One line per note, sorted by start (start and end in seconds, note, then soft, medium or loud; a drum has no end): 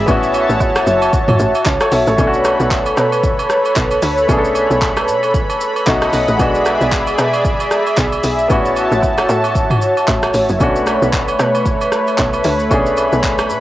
0.00 2.14 E5 medium
0.06 0.46 A1 loud
0.06 2.13 B3 medium
0.06 2.14 C#4 medium
0.06 2.15 E4 medium
0.06 2.16 F#4 medium
0.06 2.16 C#5 medium
0.06 2.16 A5 loud
0.06 kick loud
0.06 high agogo medium
0.06 shaker medium
0.11 2.16 F#4 medium
0.23 shaker soft
0.34 high agogo medium
0.34 shaker medium
0.49 0.84 A1 medium
0.49 shaker medium
0.60 kick medium
0.60 low woodblock medium
0.60 shaker medium
0.75 cross-stick loud
0.75 high agogo medium
0.75 shaker medium
0.87 1.11 F#1 loud
0.87 shaker loud
1.02 high agogo medium
1.02 shaker medium
1.13 kick loud
1.13 shaker medium
1.28 1.38 F#1 loud
1.28 mid tom medium
1.28 high agogo medium
1.39 1.53 A1 loud
1.39 shaker medium
1.55 high agogo medium
1.55 shaker soft
1.65 1.80 C#2 medium
1.65 kick loud
1.65 clap medium
1.65 low woodblock medium
1.65 shaker medium
1.80 1.92 A4 medium
1.80 1.92 C#5 medium
1.80 cross-stick loud
1.80 high agogo medium
1.80 shaker medium
1.92 2.06 B1 loud
1.92 2.06 C#5 medium
1.92 2.07 E5 medium
1.92 open hi-hat medium
1.92 shaker medium
2.07 2.17 A1 loud
2.07 2.33 A4 medium
2.07 2.33 C#5 medium
2.07 shaker medium
2.16 2.56 B1 loud
2.16 4.24 A3 medium
2.16 4.25 C#4 medium
2.16 4.25 D4 medium
2.16 6.35 A4 medium
2.16 5.83 B4 medium
2.16 5.83 C#5 medium
2.16 8.46 B5 medium
2.16 kick loud
2.16 high agogo medium
2.16 shaker medium
2.21 2.27 E4 medium
2.27 4.29 F#4 medium
2.34 shaker soft
2.44 cross-stick medium
2.44 high agogo medium
2.44 shaker medium
2.60 2.94 B1 loud
2.60 shaker medium
2.71 kick medium
2.71 clap medium
2.71 shaker medium
2.86 high agogo medium
2.86 shaker medium
2.97 3.46 B2 medium
2.97 cross-stick medium
2.97 shaker medium
3.12 high agogo medium
3.12 shaker soft
3.24 kick loud
3.24 shaker medium
3.39 high agogo medium
3.39 shaker medium
3.50 cross-stick medium
3.50 shaker medium
3.65 high agogo medium
3.65 shaker soft
3.76 4.00 B1 loud
3.76 kick medium
3.76 clap medium
3.76 low woodblock medium
3.76 shaker medium
3.91 high agogo medium
3.91 shaker soft
4.02 4.26 D2 loud
4.02 open hi-hat medium
4.02 shaker medium
4.18 shaker medium
4.27 4.67 B1 loud
4.27 5.83 A3 medium
4.27 5.83 C#4 medium
4.27 5.84 D4 medium
4.27 kick loud
4.27 high agogo medium
4.27 shaker medium
4.32 4.38 G#4 medium
4.38 5.88 A4 medium
4.44 shaker medium
4.55 high agogo medium
4.55 shaker medium
4.70 5.09 B1 loud
4.70 shaker medium
4.82 kick medium
4.82 clap medium
4.82 shaker medium
4.97 cross-stick medium
4.97 high agogo medium
4.97 shaker medium
5.08 5.56 B2 loud
5.08 shaker medium
5.23 high agogo medium
5.23 shaker soft
5.34 kick loud
5.34 shaker medium
5.50 high agogo medium
5.50 shaker medium
5.61 shaker medium
5.76 high agogo medium
5.76 shaker soft
5.86 6.11 B1 loud
5.86 6.39 A3 medium
5.86 6.39 C#4 medium
5.86 6.40 D#4 medium
5.86 6.40 F#4 medium
5.86 6.39 D#5 medium
5.86 6.39 F#5 medium
5.86 kick medium
5.86 clap medium
5.86 low woodblock medium
5.86 shaker medium
6.02 cross-stick loud
6.02 high agogo medium
6.02 shaker medium
6.13 6.27 B1 medium
6.13 open hi-hat medium
6.13 shaker medium
6.28 6.38 A1 medium
6.28 shaker medium
6.38 6.77 B1 loud
6.38 8.45 G#3 medium
6.38 8.46 B3 medium
6.38 8.47 D4 medium
6.38 8.48 G#4 medium
6.38 8.48 D5 medium
6.38 10.56 E5 medium
6.38 kick loud
6.38 high agogo medium
6.38 shaker medium
6.42 8.47 F#4 medium
6.55 shaker soft
6.66 cross-stick medium
6.66 high agogo medium
6.66 shaker medium
6.81 7.15 B1 loud
6.81 shaker medium
6.92 kick medium
6.92 clap medium
6.92 shaker medium
7.07 high agogo medium
7.07 shaker medium
7.18 7.67 B2 medium
7.18 cross-stick loud
7.18 shaker loud
7.33 high agogo medium
7.33 shaker soft
7.45 kick loud
7.45 shaker medium
7.60 high agogo medium
7.60 shaker medium
7.71 cross-stick medium
7.71 shaker medium
7.87 high agogo medium
7.87 shaker soft
7.97 8.21 B1 loud
7.97 kick medium
7.97 clap medium
7.97 low woodblock medium
7.97 shaker medium
8.12 high agogo medium
8.12 shaker soft
8.23 8.48 B1 medium
8.23 open hi-hat medium
8.23 shaker medium
8.39 shaker medium
8.48 8.88 A1 loud
8.48 10.56 B3 medium
8.48 10.56 C#4 medium
8.48 10.57 E4 medium
8.48 10.58 F#4 medium
8.48 13.60 C#5 medium
8.48 10.58 A5 loud
8.48 kick loud
8.48 high agogo medium
8.48 shaker medium
8.53 10.58 F#4 medium
8.65 shaker soft
8.76 high agogo medium
8.76 shaker medium
8.92 9.26 A1 loud
8.92 shaker medium
9.02 kick medium
9.02 low woodblock medium
9.02 shaker medium
9.18 cross-stick medium
9.18 high agogo medium
9.18 shaker soft
9.29 9.78 A2 loud
9.29 shaker medium
9.44 high agogo medium
9.44 shaker soft
9.55 kick loud
9.55 shaker medium
9.70 mid tom medium
9.70 high agogo medium
9.82 shaker medium
9.97 high agogo medium
9.97 shaker soft
10.08 10.32 A1 loud
10.08 kick medium
10.08 clap medium
10.08 low woodblock medium
10.08 shaker medium
10.23 cross-stick loud
10.23 high agogo medium
10.23 shaker medium
10.34 10.48 A1 medium
10.34 open hi-hat medium
10.34 shaker medium
10.49 10.59 F#1 medium
10.49 shaker medium
10.59 10.98 B1 loud
10.59 12.66 A3 medium
10.59 13.60 A3 medium
10.59 12.67 C#4 medium
10.59 12.68 D4 medium
10.59 13.60 B4 medium
10.59 13.60 B5 loud
10.59 kick loud
10.59 high agogo medium
10.59 shaker medium
10.63 12.68 F#4 medium
10.76 shaker soft
10.87 cross-stick medium
10.87 high agogo medium
10.87 shaker medium
11.02 11.36 B1 loud
11.02 shaker medium
11.13 kick medium
11.13 clap medium
11.13 shaker medium
11.28 high agogo medium
11.28 shaker soft
11.39 11.88 B2 loud
11.39 cross-stick medium
11.39 shaker medium
11.55 high agogo medium
11.55 shaker soft
11.66 kick loud
11.66 shaker medium
11.81 high agogo medium
11.81 shaker medium
11.92 cross-stick medium
11.92 shaker medium
12.08 high agogo medium
12.08 shaker soft
12.18 12.43 B1 loud
12.18 kick medium
12.18 clap medium
12.18 low woodblock medium
12.18 shaker medium
12.33 high agogo medium
12.33 shaker medium
12.44 12.69 D2 loud
12.44 open hi-hat medium
12.44 shaker medium
12.60 shaker medium
12.69 13.09 B1 loud
12.69 13.60 A3 medium
12.69 13.60 C#4 medium
12.69 13.60 D4 medium
12.69 kick loud
12.69 high agogo medium
12.69 shaker medium
12.74 13.60 G#4 medium
12.86 shaker soft
12.97 high agogo medium
12.97 shaker medium
13.13 13.51 B1 loud
13.13 shaker medium
13.24 kick medium
13.24 clap medium
13.24 shaker medium
13.38 cross-stick loud
13.38 high agogo medium
13.38 shaker medium
13.50 13.60 B2 loud
13.50 shaker medium